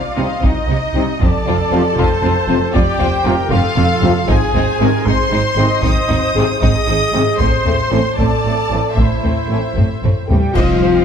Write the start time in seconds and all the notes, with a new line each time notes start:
Already playing: F4 D5 F5
0.16 C2 C3 G3 C4 D#4 D#5
0.41 C2 C3 C4 D#4 D#5, taiko
0.66 C2 C3 C4 D#4
0.93 C2 C3 G3 C4 D#4
1.19 F1 F2 C4 F4 A4 D5 A5, taiko
1.46 F1 F2 C4 F4, taiko low
1.71 F1 F2 C3 F3 C4 F4
1.97 F1 F2 C4 F4 C5, taiko
2.22 F1 F2 C4 F4
2.48 F1 F2 C3 F3 C4 F4
2.73 F1 F2 C4 F4 G4 D5 G5, taiko
2.99 F1 F2 C4 F4 C5, taiko low
3.24 F1 F2 C3 F3 C4 F4 A#4
3.50 F1 F2 C4 F4 A4 F5, taiko low-mid
3.76 F1 F2 C4 F4, taiko mid
4.01 F1 F2 C3 F3 C4 F4, taiko low
4.27 G#1 G#2 C4 D#4 G#4 G#5, taiko
4.53 G#1 G#2 C4 D#4 C5, taiko low
4.79 G#1 G#2 C3 D#3 C4 D#4 G#4 A#4
5.05 G#1 G#2 C4 D#4 G#4 C5 C6, taiko
5.31 G#1 G#2 C4 D#4 C5
5.56 G#1 G#2 C3 D#3 C4 D#4 G#4 D#5
5.83 G#1 G#2 C4 D#4 C5 D#5 D#6, taiko
6.08 G#1 G#2 C4 D#4, taiko low
6.34 G#1 G#2 C3 D#3 C4 D#4 G#4
6.60 G#1 G#2 C4 D#4 G#4 D#5 D#6, taiko
6.87 G#1 G#2 C4 D#4
7.12 G#1 G#2 C3 D#3 C4 D#4 G#4
7.38 A1 A2 A3 C4 C5 C6, taiko
7.65 A1 A2 A3 C4, taiko low
7.89 A1 A2 E3 A3 C4 A4
8.16 A1 A2 A3 C4 A4 D5 A5, taiko
8.43 A1 A2 A3 C4
8.69 A1 A2 E3 A3 C4 A4
8.95 A1 A2 A3 C4 E4 C5 E5, taiko
9.21 A1 A2 A3 C4, taiko low
9.47 A1 A2 E3 C4 A4
9.52 A3
9.74 A1 A2 A3 C4, taiko low-mid
10.02 A1 A2 A3 C4, taiko low-mid
10.28 A1 A2 E3 G3 A3 C4 G4 A4 G5, taiko low
10.54 C2 C3 F3 G3 C4 F4 C5 D#5 F5 G5, concert bass drum, taiko, crash
10.81 C2 C5